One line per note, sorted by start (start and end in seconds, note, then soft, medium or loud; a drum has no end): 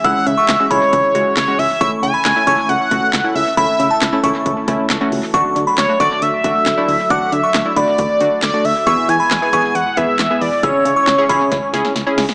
0.00 5.30 C#3 medium
0.00 5.30 E3 medium
0.00 1.77 G#3 medium
0.00 5.30 E4 medium
0.00 1.77 G#4 medium
0.04 0.13 C#2 loud
0.04 0.36 G#3 medium
0.04 0.36 C#4 medium
0.04 0.36 E4 medium
0.04 0.28 F#5 loud
0.04 0.17 E6 loud
0.04 kick loud
0.04 closed hi-hat medium
0.26 0.35 C#3 loud
0.26 0.72 E5 loud
0.26 closed hi-hat medium
0.37 0.50 C#6 medium
0.48 0.57 C#2 loud
0.48 snare loud
0.48 clap medium
0.48 closed hi-hat medium
0.60 0.66 G#3 medium
0.60 0.66 C#4 medium
0.60 0.66 F#4 medium
0.70 0.79 C#2 loud
0.70 0.96 G#3 medium
0.70 0.96 C#4 medium
0.70 0.96 E4 medium
0.70 1.36 C#5 loud
0.70 0.77 B5 medium
0.70 kick medium
0.70 closed hi-hat medium
0.93 1.01 C#2 loud
0.93 kick medium
0.93 closed hi-hat medium
1.15 1.23 C#2 medium
1.15 1.34 G#3 medium
1.15 1.34 C#4 medium
1.15 1.34 F#4 medium
1.15 closed hi-hat medium
1.36 1.45 C#2 loud
1.36 1.60 C#5 loud
1.36 snare loud
1.36 clap medium
1.36 closed hi-hat medium
1.48 1.67 G#3 medium
1.48 1.67 C#4 medium
1.48 1.67 F#4 medium
1.59 1.67 C#2 loud
1.59 1.80 E5 loud
1.59 open hi-hat medium
1.81 1.89 C#2 loud
1.81 5.30 A3 medium
1.81 2.12 A3 medium
1.81 2.12 C#4 medium
1.81 2.12 E4 medium
1.81 8.83 A4 medium
1.81 1.91 E5 loud
1.81 1.94 C#6 loud
1.81 kick loud
1.81 closed hi-hat medium
2.03 2.11 C#3 loud
2.03 2.70 G#5 loud
2.03 closed hi-hat medium
2.14 2.27 B5 medium
2.25 2.33 C#2 loud
2.25 snare loud
2.25 clap medium
2.25 closed hi-hat medium
2.36 2.42 A3 medium
2.36 2.42 C#4 medium
2.36 2.42 E4 medium
2.47 2.55 C#2 loud
2.47 2.72 A3 medium
2.47 2.72 C#4 medium
2.47 2.72 E4 medium
2.47 2.54 C#6 medium
2.47 kick medium
2.47 closed hi-hat medium
2.69 2.78 C#2 loud
2.69 3.35 F#5 loud
2.69 closed hi-hat medium
2.91 3.00 C#2 loud
2.91 3.10 A3 medium
2.91 3.10 C#4 medium
2.91 3.10 F#4 medium
2.91 kick medium
2.91 closed hi-hat medium
3.13 3.22 C#2 medium
3.13 snare loud
3.13 clap medium
3.13 closed hi-hat medium
3.24 3.43 A3 medium
3.24 3.43 C#4 medium
3.24 3.43 E4 medium
3.35 3.44 C#2 loud
3.35 3.56 E5 loud
3.35 open hi-hat medium
3.57 3.66 C#2 loud
3.57 3.89 A3 medium
3.57 3.89 C#4 medium
3.57 3.89 E4 medium
3.57 4.20 E5 loud
3.57 3.70 B5 loud
3.57 kick loud
3.57 closed hi-hat medium
3.79 3.88 C#3 loud
3.79 closed hi-hat medium
3.91 4.04 A5 medium
4.01 4.10 C#2 loud
4.01 snare loud
4.01 clap medium
4.01 closed hi-hat medium
4.13 4.19 A3 medium
4.13 4.19 C#4 medium
4.13 4.19 E4 loud
4.24 4.32 C#2 loud
4.24 4.49 A3 medium
4.24 4.49 C#4 medium
4.24 4.49 E4 loud
4.24 4.30 C#6 medium
4.24 kick medium
4.24 closed hi-hat medium
4.46 4.54 C#2 loud
4.46 kick medium
4.46 closed hi-hat medium
4.68 4.76 C#2 loud
4.68 4.87 A3 medium
4.68 4.87 C#4 medium
4.68 4.87 E4 loud
4.68 kick medium
4.68 closed hi-hat medium
4.90 4.98 C#2 loud
4.90 snare loud
4.90 clap medium
4.90 closed hi-hat medium
5.01 5.20 A3 medium
5.01 5.20 C#4 medium
5.01 5.20 F#4 loud
5.12 5.20 C#2 loud
5.12 open hi-hat medium
5.34 5.42 D2 loud
5.34 8.83 D3 medium
5.34 8.83 F#3 medium
5.34 5.65 A3 medium
5.34 8.83 A3 medium
5.34 5.65 D4 medium
5.34 5.65 F#4 loud
5.34 8.83 F#4 medium
5.34 5.47 C#6 loud
5.34 kick loud
5.34 closed hi-hat medium
5.56 5.64 D3 loud
5.56 closed hi-hat medium
5.67 5.80 B5 medium
5.78 5.86 D2 loud
5.78 5.99 C#5 medium
5.78 snare loud
5.78 clap medium
5.78 closed hi-hat medium
5.89 5.95 A3 medium
5.89 5.95 D4 medium
5.89 5.95 F#4 medium
6.00 6.08 D2 loud
6.00 6.25 A3 medium
6.00 6.25 D4 medium
6.00 6.25 F#4 medium
6.00 6.24 D5 medium
6.00 6.07 C#6 medium
6.00 kick medium
6.00 closed hi-hat medium
6.22 6.30 D2 loud
6.22 7.12 E5 loud
6.22 closed hi-hat medium
6.44 6.53 D2 medium
6.44 6.63 A3 medium
6.44 6.63 D4 medium
6.44 6.63 F#4 medium
6.44 kick medium
6.44 closed hi-hat medium
6.66 6.75 D2 loud
6.66 snare loud
6.66 clap loud
6.66 closed hi-hat medium
6.77 6.96 A3 medium
6.77 6.96 D4 medium
6.77 6.96 E4 loud
6.88 6.97 D2 loud
6.88 open hi-hat medium
7.10 7.19 D2 loud
7.10 7.42 A3 medium
7.10 7.42 D4 medium
7.10 7.42 F#4 medium
7.10 7.34 F#5 loud
7.10 7.23 D6 loud
7.10 kick loud
7.10 closed hi-hat medium
7.32 7.41 D3 loud
7.32 7.78 E5 loud
7.32 closed hi-hat medium
7.43 7.56 C#6 medium
7.54 7.63 D2 loud
7.54 snare loud
7.54 clap medium
7.54 closed hi-hat medium
7.66 7.72 A3 medium
7.66 7.72 D4 medium
7.66 7.72 E4 medium
7.76 7.85 D2 loud
7.76 8.02 A3 medium
7.76 8.02 D4 medium
7.76 8.02 F#4 medium
7.76 8.42 D5 loud
7.76 7.83 B5 medium
7.76 kick medium
7.76 closed hi-hat medium
7.98 8.07 D2 loud
7.98 kick medium
7.98 closed hi-hat medium
8.21 8.29 D2 loud
8.21 8.40 A3 medium
8.21 8.40 D4 medium
8.21 8.40 F#4 medium
8.21 closed hi-hat medium
8.42 8.51 D2 loud
8.42 8.66 D5 loud
8.42 snare loud
8.42 clap loud
8.42 closed hi-hat medium
8.54 8.73 A3 medium
8.54 8.73 D4 medium
8.54 8.73 F#4 medium
8.65 8.73 D2 loud
8.65 8.86 E5 loud
8.65 open hi-hat medium
8.87 8.95 E2 loud
8.87 10.62 B2 medium
8.87 12.34 E3 medium
8.87 12.34 G#3 medium
8.87 9.18 B3 medium
8.87 9.18 E4 medium
8.87 12.34 E4 medium
8.87 9.18 G#4 medium
8.87 10.62 G#4 medium
8.87 9.10 E5 loud
8.87 9.00 C#6 loud
8.87 kick loud
8.87 closed hi-hat medium
9.09 9.17 E3 loud
9.09 9.76 G#5 loud
9.09 closed hi-hat medium
9.20 9.33 B5 medium
9.31 9.39 E2 loud
9.31 snare loud
9.31 clap medium
9.31 closed hi-hat medium
9.42 9.48 B3 medium
9.42 9.48 E4 medium
9.42 9.48 G#4 medium
9.53 9.61 E2 loud
9.53 9.78 B3 medium
9.53 9.78 E4 medium
9.53 9.78 G#4 medium
9.53 9.60 C#6 medium
9.53 kick medium
9.53 closed hi-hat medium
9.75 9.83 E2 loud
9.75 9.98 F#5 loud
9.75 closed hi-hat medium
9.97 10.06 E2 loud
9.97 10.16 B3 medium
9.97 10.16 E4 medium
9.97 10.16 G#4 medium
9.97 10.43 E5 loud
9.97 kick medium
9.97 closed hi-hat medium
10.19 10.28 E2 loud
10.19 snare loud
10.19 clap loud
10.19 closed hi-hat medium
10.30 10.49 B3 medium
10.30 10.49 E4 medium
10.30 10.49 G#4 medium
10.41 10.50 E2 loud
10.41 10.64 D5 medium
10.41 open hi-hat medium
10.63 10.72 C#2 loud
10.63 12.34 C#3 medium
10.63 10.95 C#4 medium
10.63 10.95 E4 medium
10.63 12.34 G#4 medium
10.63 10.95 G#4 medium
10.63 12.17 C#5 loud
10.63 10.76 E6 loud
10.63 kick loud
10.63 closed hi-hat medium
10.85 10.94 C#3 loud
10.85 closed hi-hat medium
10.96 11.09 C#6 medium
11.07 11.16 C#2 loud
11.07 snare loud
11.07 clap medium
11.07 closed hi-hat medium
11.18 11.25 C#4 medium
11.18 11.25 E4 medium
11.18 11.25 G#4 loud
11.29 11.38 C#2 loud
11.29 11.55 C#4 medium
11.29 11.55 E4 medium
11.29 11.55 G#4 loud
11.29 11.36 B5 medium
11.29 kick medium
11.29 closed hi-hat medium
11.52 11.60 C#2 loud
11.52 kick medium
11.52 snare medium
11.52 closed hi-hat medium
11.73 11.82 C#2 loud
11.73 11.92 C#4 medium
11.73 11.92 E4 medium
11.73 11.92 G#4 loud
11.73 snare medium
11.73 closed hi-hat medium
11.85 snare medium
11.95 12.04 C#2 loud
11.95 snare medium
11.95 closed hi-hat medium
12.07 12.25 C#4 medium
12.07 12.25 E4 medium
12.07 12.26 G#4 loud
12.18 12.26 C#2 loud
12.18 snare loud
12.18 open hi-hat medium
12.29 snare medium